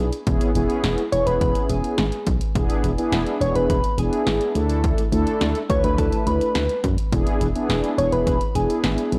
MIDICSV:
0, 0, Header, 1, 5, 480
1, 0, Start_track
1, 0, Tempo, 571429
1, 224, Time_signature, 4, 2, 24, 8
1, 7716, End_track
2, 0, Start_track
2, 0, Title_t, "Soft synth lead"
2, 0, Program_c, 0, 80
2, 943, Note_on_c, 0, 73, 104
2, 1065, Note_on_c, 0, 71, 94
2, 1077, Note_off_c, 0, 73, 0
2, 1182, Note_off_c, 0, 71, 0
2, 1187, Note_on_c, 0, 71, 104
2, 1427, Note_on_c, 0, 68, 90
2, 1440, Note_off_c, 0, 71, 0
2, 1906, Note_off_c, 0, 68, 0
2, 2866, Note_on_c, 0, 73, 101
2, 2977, Note_off_c, 0, 73, 0
2, 2988, Note_on_c, 0, 71, 95
2, 3098, Note_off_c, 0, 71, 0
2, 3109, Note_on_c, 0, 71, 106
2, 3352, Note_on_c, 0, 68, 90
2, 3364, Note_off_c, 0, 71, 0
2, 3828, Note_off_c, 0, 68, 0
2, 4787, Note_on_c, 0, 73, 101
2, 4909, Note_on_c, 0, 71, 92
2, 4921, Note_off_c, 0, 73, 0
2, 5026, Note_on_c, 0, 69, 98
2, 5039, Note_off_c, 0, 71, 0
2, 5260, Note_off_c, 0, 69, 0
2, 5265, Note_on_c, 0, 71, 90
2, 5711, Note_off_c, 0, 71, 0
2, 6705, Note_on_c, 0, 73, 102
2, 6825, Note_on_c, 0, 71, 93
2, 6837, Note_off_c, 0, 73, 0
2, 6941, Note_off_c, 0, 71, 0
2, 6946, Note_on_c, 0, 71, 103
2, 7187, Note_on_c, 0, 68, 89
2, 7200, Note_off_c, 0, 71, 0
2, 7666, Note_off_c, 0, 68, 0
2, 7716, End_track
3, 0, Start_track
3, 0, Title_t, "Analog polysynth"
3, 0, Program_c, 1, 90
3, 0, Note_on_c, 1, 59, 69
3, 0, Note_on_c, 1, 62, 66
3, 0, Note_on_c, 1, 64, 67
3, 0, Note_on_c, 1, 68, 81
3, 89, Note_off_c, 1, 59, 0
3, 90, Note_off_c, 1, 62, 0
3, 90, Note_off_c, 1, 64, 0
3, 90, Note_off_c, 1, 68, 0
3, 226, Note_on_c, 1, 59, 88
3, 226, Note_on_c, 1, 61, 75
3, 226, Note_on_c, 1, 64, 78
3, 226, Note_on_c, 1, 68, 93
3, 420, Note_off_c, 1, 59, 0
3, 420, Note_off_c, 1, 61, 0
3, 420, Note_off_c, 1, 64, 0
3, 420, Note_off_c, 1, 68, 0
3, 468, Note_on_c, 1, 59, 89
3, 468, Note_on_c, 1, 61, 83
3, 468, Note_on_c, 1, 64, 82
3, 468, Note_on_c, 1, 68, 97
3, 855, Note_off_c, 1, 59, 0
3, 856, Note_off_c, 1, 61, 0
3, 856, Note_off_c, 1, 64, 0
3, 856, Note_off_c, 1, 68, 0
3, 945, Note_on_c, 1, 68, 80
3, 946, Note_on_c, 1, 59, 74
3, 946, Note_on_c, 1, 64, 69
3, 947, Note_on_c, 1, 61, 69
3, 1724, Note_off_c, 1, 59, 0
3, 1724, Note_off_c, 1, 61, 0
3, 1724, Note_off_c, 1, 64, 0
3, 1724, Note_off_c, 1, 68, 0
3, 2145, Note_on_c, 1, 62, 78
3, 2145, Note_on_c, 1, 64, 78
3, 2145, Note_on_c, 1, 68, 94
3, 2146, Note_on_c, 1, 59, 85
3, 2437, Note_off_c, 1, 59, 0
3, 2437, Note_off_c, 1, 62, 0
3, 2437, Note_off_c, 1, 64, 0
3, 2437, Note_off_c, 1, 68, 0
3, 2504, Note_on_c, 1, 59, 89
3, 2504, Note_on_c, 1, 62, 82
3, 2504, Note_on_c, 1, 64, 81
3, 2504, Note_on_c, 1, 68, 96
3, 3186, Note_off_c, 1, 59, 0
3, 3186, Note_off_c, 1, 62, 0
3, 3186, Note_off_c, 1, 64, 0
3, 3186, Note_off_c, 1, 68, 0
3, 3344, Note_on_c, 1, 59, 72
3, 3344, Note_on_c, 1, 62, 69
3, 3344, Note_on_c, 1, 64, 67
3, 3344, Note_on_c, 1, 68, 83
3, 3814, Note_off_c, 1, 62, 0
3, 3814, Note_off_c, 1, 64, 0
3, 3824, Note_off_c, 1, 59, 0
3, 3824, Note_off_c, 1, 68, 0
3, 3824, Note_on_c, 1, 57, 76
3, 3824, Note_on_c, 1, 62, 71
3, 3824, Note_on_c, 1, 64, 72
3, 3824, Note_on_c, 1, 69, 83
3, 4214, Note_off_c, 1, 57, 0
3, 4214, Note_off_c, 1, 62, 0
3, 4214, Note_off_c, 1, 64, 0
3, 4214, Note_off_c, 1, 69, 0
3, 4303, Note_on_c, 1, 62, 82
3, 4304, Note_on_c, 1, 57, 89
3, 4304, Note_on_c, 1, 64, 82
3, 4304, Note_on_c, 1, 69, 96
3, 4693, Note_off_c, 1, 62, 0
3, 4694, Note_off_c, 1, 57, 0
3, 4694, Note_off_c, 1, 64, 0
3, 4694, Note_off_c, 1, 69, 0
3, 4782, Note_on_c, 1, 64, 71
3, 4783, Note_on_c, 1, 57, 73
3, 4783, Note_on_c, 1, 62, 67
3, 4783, Note_on_c, 1, 71, 82
3, 5562, Note_off_c, 1, 62, 0
3, 5562, Note_off_c, 1, 64, 0
3, 5563, Note_off_c, 1, 57, 0
3, 5563, Note_off_c, 1, 71, 0
3, 5983, Note_on_c, 1, 59, 82
3, 5984, Note_on_c, 1, 62, 78
3, 5984, Note_on_c, 1, 64, 78
3, 5984, Note_on_c, 1, 68, 96
3, 6276, Note_off_c, 1, 59, 0
3, 6276, Note_off_c, 1, 62, 0
3, 6276, Note_off_c, 1, 64, 0
3, 6276, Note_off_c, 1, 68, 0
3, 6345, Note_on_c, 1, 59, 91
3, 6345, Note_on_c, 1, 62, 84
3, 6345, Note_on_c, 1, 64, 81
3, 6345, Note_on_c, 1, 68, 97
3, 7026, Note_off_c, 1, 59, 0
3, 7026, Note_off_c, 1, 62, 0
3, 7026, Note_off_c, 1, 64, 0
3, 7026, Note_off_c, 1, 68, 0
3, 7185, Note_on_c, 1, 59, 73
3, 7186, Note_on_c, 1, 62, 66
3, 7186, Note_on_c, 1, 64, 67
3, 7186, Note_on_c, 1, 68, 81
3, 7716, Note_off_c, 1, 59, 0
3, 7716, Note_off_c, 1, 62, 0
3, 7716, Note_off_c, 1, 64, 0
3, 7716, Note_off_c, 1, 68, 0
3, 7716, End_track
4, 0, Start_track
4, 0, Title_t, "FM bass"
4, 0, Program_c, 2, 39
4, 0, Note_on_c, 2, 35, 91
4, 91, Note_off_c, 2, 35, 0
4, 226, Note_on_c, 2, 28, 103
4, 333, Note_off_c, 2, 28, 0
4, 463, Note_on_c, 2, 28, 98
4, 571, Note_off_c, 2, 28, 0
4, 704, Note_on_c, 2, 28, 102
4, 812, Note_off_c, 2, 28, 0
4, 946, Note_on_c, 2, 28, 86
4, 1053, Note_off_c, 2, 28, 0
4, 1064, Note_on_c, 2, 28, 94
4, 1171, Note_off_c, 2, 28, 0
4, 1186, Note_on_c, 2, 28, 106
4, 1293, Note_off_c, 2, 28, 0
4, 1425, Note_on_c, 2, 28, 94
4, 1532, Note_off_c, 2, 28, 0
4, 1665, Note_on_c, 2, 32, 100
4, 1772, Note_off_c, 2, 32, 0
4, 1905, Note_on_c, 2, 35, 93
4, 2012, Note_off_c, 2, 35, 0
4, 2145, Note_on_c, 2, 28, 107
4, 2252, Note_off_c, 2, 28, 0
4, 2384, Note_on_c, 2, 28, 101
4, 2492, Note_off_c, 2, 28, 0
4, 2622, Note_on_c, 2, 28, 103
4, 2731, Note_off_c, 2, 28, 0
4, 2862, Note_on_c, 2, 28, 106
4, 2971, Note_off_c, 2, 28, 0
4, 2983, Note_on_c, 2, 28, 87
4, 3091, Note_off_c, 2, 28, 0
4, 3106, Note_on_c, 2, 28, 103
4, 3213, Note_off_c, 2, 28, 0
4, 3343, Note_on_c, 2, 28, 102
4, 3451, Note_off_c, 2, 28, 0
4, 3584, Note_on_c, 2, 32, 92
4, 3692, Note_off_c, 2, 32, 0
4, 3824, Note_on_c, 2, 38, 95
4, 4146, Note_off_c, 2, 38, 0
4, 4303, Note_on_c, 2, 38, 101
4, 4411, Note_off_c, 2, 38, 0
4, 4543, Note_on_c, 2, 38, 98
4, 4651, Note_off_c, 2, 38, 0
4, 4785, Note_on_c, 2, 38, 99
4, 4892, Note_off_c, 2, 38, 0
4, 4906, Note_on_c, 2, 38, 96
4, 5013, Note_off_c, 2, 38, 0
4, 5026, Note_on_c, 2, 38, 96
4, 5133, Note_off_c, 2, 38, 0
4, 5264, Note_on_c, 2, 38, 101
4, 5372, Note_off_c, 2, 38, 0
4, 5505, Note_on_c, 2, 38, 89
4, 5612, Note_off_c, 2, 38, 0
4, 5745, Note_on_c, 2, 42, 93
4, 5852, Note_off_c, 2, 42, 0
4, 5985, Note_on_c, 2, 28, 105
4, 6092, Note_off_c, 2, 28, 0
4, 6224, Note_on_c, 2, 28, 94
4, 6332, Note_off_c, 2, 28, 0
4, 6463, Note_on_c, 2, 28, 98
4, 6571, Note_off_c, 2, 28, 0
4, 6704, Note_on_c, 2, 28, 100
4, 6811, Note_off_c, 2, 28, 0
4, 6825, Note_on_c, 2, 28, 91
4, 6932, Note_off_c, 2, 28, 0
4, 6945, Note_on_c, 2, 28, 94
4, 7052, Note_off_c, 2, 28, 0
4, 7185, Note_on_c, 2, 28, 108
4, 7292, Note_off_c, 2, 28, 0
4, 7423, Note_on_c, 2, 32, 95
4, 7531, Note_off_c, 2, 32, 0
4, 7663, Note_on_c, 2, 35, 93
4, 7716, Note_off_c, 2, 35, 0
4, 7716, End_track
5, 0, Start_track
5, 0, Title_t, "Drums"
5, 105, Note_on_c, 9, 42, 59
5, 189, Note_off_c, 9, 42, 0
5, 225, Note_on_c, 9, 36, 111
5, 225, Note_on_c, 9, 42, 73
5, 309, Note_off_c, 9, 36, 0
5, 309, Note_off_c, 9, 42, 0
5, 344, Note_on_c, 9, 42, 58
5, 428, Note_off_c, 9, 42, 0
5, 465, Note_on_c, 9, 42, 72
5, 549, Note_off_c, 9, 42, 0
5, 586, Note_on_c, 9, 42, 48
5, 670, Note_off_c, 9, 42, 0
5, 703, Note_on_c, 9, 42, 64
5, 704, Note_on_c, 9, 38, 105
5, 787, Note_off_c, 9, 42, 0
5, 788, Note_off_c, 9, 38, 0
5, 822, Note_on_c, 9, 42, 44
5, 906, Note_off_c, 9, 42, 0
5, 945, Note_on_c, 9, 42, 69
5, 1029, Note_off_c, 9, 42, 0
5, 1065, Note_on_c, 9, 42, 57
5, 1149, Note_off_c, 9, 42, 0
5, 1186, Note_on_c, 9, 36, 73
5, 1186, Note_on_c, 9, 42, 72
5, 1270, Note_off_c, 9, 36, 0
5, 1270, Note_off_c, 9, 42, 0
5, 1304, Note_on_c, 9, 42, 49
5, 1388, Note_off_c, 9, 42, 0
5, 1424, Note_on_c, 9, 42, 75
5, 1508, Note_off_c, 9, 42, 0
5, 1547, Note_on_c, 9, 42, 53
5, 1631, Note_off_c, 9, 42, 0
5, 1663, Note_on_c, 9, 38, 108
5, 1663, Note_on_c, 9, 42, 62
5, 1747, Note_off_c, 9, 38, 0
5, 1747, Note_off_c, 9, 42, 0
5, 1782, Note_on_c, 9, 42, 48
5, 1866, Note_off_c, 9, 42, 0
5, 1903, Note_on_c, 9, 42, 69
5, 1905, Note_on_c, 9, 36, 93
5, 1987, Note_off_c, 9, 42, 0
5, 1989, Note_off_c, 9, 36, 0
5, 2024, Note_on_c, 9, 42, 62
5, 2108, Note_off_c, 9, 42, 0
5, 2146, Note_on_c, 9, 36, 112
5, 2146, Note_on_c, 9, 42, 72
5, 2230, Note_off_c, 9, 36, 0
5, 2230, Note_off_c, 9, 42, 0
5, 2265, Note_on_c, 9, 42, 58
5, 2349, Note_off_c, 9, 42, 0
5, 2385, Note_on_c, 9, 42, 70
5, 2469, Note_off_c, 9, 42, 0
5, 2506, Note_on_c, 9, 42, 48
5, 2590, Note_off_c, 9, 42, 0
5, 2624, Note_on_c, 9, 42, 64
5, 2626, Note_on_c, 9, 38, 107
5, 2708, Note_off_c, 9, 42, 0
5, 2710, Note_off_c, 9, 38, 0
5, 2743, Note_on_c, 9, 42, 44
5, 2827, Note_off_c, 9, 42, 0
5, 2867, Note_on_c, 9, 42, 69
5, 2951, Note_off_c, 9, 42, 0
5, 2986, Note_on_c, 9, 42, 57
5, 3070, Note_off_c, 9, 42, 0
5, 3106, Note_on_c, 9, 36, 76
5, 3106, Note_on_c, 9, 42, 72
5, 3190, Note_off_c, 9, 36, 0
5, 3190, Note_off_c, 9, 42, 0
5, 3224, Note_on_c, 9, 42, 50
5, 3308, Note_off_c, 9, 42, 0
5, 3345, Note_on_c, 9, 42, 74
5, 3429, Note_off_c, 9, 42, 0
5, 3467, Note_on_c, 9, 42, 53
5, 3551, Note_off_c, 9, 42, 0
5, 3584, Note_on_c, 9, 38, 105
5, 3584, Note_on_c, 9, 42, 61
5, 3668, Note_off_c, 9, 38, 0
5, 3668, Note_off_c, 9, 42, 0
5, 3703, Note_on_c, 9, 42, 47
5, 3787, Note_off_c, 9, 42, 0
5, 3824, Note_on_c, 9, 42, 68
5, 3908, Note_off_c, 9, 42, 0
5, 3944, Note_on_c, 9, 42, 58
5, 4028, Note_off_c, 9, 42, 0
5, 4064, Note_on_c, 9, 42, 72
5, 4065, Note_on_c, 9, 36, 110
5, 4148, Note_off_c, 9, 42, 0
5, 4149, Note_off_c, 9, 36, 0
5, 4184, Note_on_c, 9, 42, 58
5, 4268, Note_off_c, 9, 42, 0
5, 4305, Note_on_c, 9, 42, 71
5, 4389, Note_off_c, 9, 42, 0
5, 4426, Note_on_c, 9, 42, 49
5, 4510, Note_off_c, 9, 42, 0
5, 4545, Note_on_c, 9, 42, 64
5, 4546, Note_on_c, 9, 38, 106
5, 4629, Note_off_c, 9, 42, 0
5, 4630, Note_off_c, 9, 38, 0
5, 4663, Note_on_c, 9, 42, 43
5, 4747, Note_off_c, 9, 42, 0
5, 4785, Note_on_c, 9, 36, 96
5, 4787, Note_on_c, 9, 42, 67
5, 4869, Note_off_c, 9, 36, 0
5, 4871, Note_off_c, 9, 42, 0
5, 4905, Note_on_c, 9, 42, 58
5, 4989, Note_off_c, 9, 42, 0
5, 5026, Note_on_c, 9, 36, 77
5, 5026, Note_on_c, 9, 42, 73
5, 5110, Note_off_c, 9, 36, 0
5, 5110, Note_off_c, 9, 42, 0
5, 5145, Note_on_c, 9, 42, 52
5, 5229, Note_off_c, 9, 42, 0
5, 5265, Note_on_c, 9, 42, 75
5, 5349, Note_off_c, 9, 42, 0
5, 5386, Note_on_c, 9, 42, 51
5, 5470, Note_off_c, 9, 42, 0
5, 5503, Note_on_c, 9, 38, 109
5, 5503, Note_on_c, 9, 42, 65
5, 5587, Note_off_c, 9, 38, 0
5, 5587, Note_off_c, 9, 42, 0
5, 5623, Note_on_c, 9, 42, 46
5, 5707, Note_off_c, 9, 42, 0
5, 5744, Note_on_c, 9, 42, 67
5, 5745, Note_on_c, 9, 36, 91
5, 5828, Note_off_c, 9, 42, 0
5, 5829, Note_off_c, 9, 36, 0
5, 5864, Note_on_c, 9, 42, 62
5, 5948, Note_off_c, 9, 42, 0
5, 5985, Note_on_c, 9, 36, 114
5, 5985, Note_on_c, 9, 42, 75
5, 6069, Note_off_c, 9, 36, 0
5, 6069, Note_off_c, 9, 42, 0
5, 6104, Note_on_c, 9, 42, 58
5, 6188, Note_off_c, 9, 42, 0
5, 6225, Note_on_c, 9, 42, 70
5, 6309, Note_off_c, 9, 42, 0
5, 6347, Note_on_c, 9, 42, 50
5, 6431, Note_off_c, 9, 42, 0
5, 6465, Note_on_c, 9, 42, 61
5, 6467, Note_on_c, 9, 38, 105
5, 6549, Note_off_c, 9, 42, 0
5, 6551, Note_off_c, 9, 38, 0
5, 6583, Note_on_c, 9, 42, 44
5, 6667, Note_off_c, 9, 42, 0
5, 6707, Note_on_c, 9, 42, 66
5, 6791, Note_off_c, 9, 42, 0
5, 6825, Note_on_c, 9, 42, 55
5, 6909, Note_off_c, 9, 42, 0
5, 6946, Note_on_c, 9, 36, 75
5, 6946, Note_on_c, 9, 42, 73
5, 7030, Note_off_c, 9, 36, 0
5, 7030, Note_off_c, 9, 42, 0
5, 7064, Note_on_c, 9, 42, 51
5, 7148, Note_off_c, 9, 42, 0
5, 7185, Note_on_c, 9, 42, 76
5, 7269, Note_off_c, 9, 42, 0
5, 7308, Note_on_c, 9, 42, 54
5, 7392, Note_off_c, 9, 42, 0
5, 7423, Note_on_c, 9, 38, 110
5, 7423, Note_on_c, 9, 42, 63
5, 7507, Note_off_c, 9, 38, 0
5, 7507, Note_off_c, 9, 42, 0
5, 7543, Note_on_c, 9, 42, 49
5, 7627, Note_off_c, 9, 42, 0
5, 7664, Note_on_c, 9, 42, 69
5, 7716, Note_off_c, 9, 42, 0
5, 7716, End_track
0, 0, End_of_file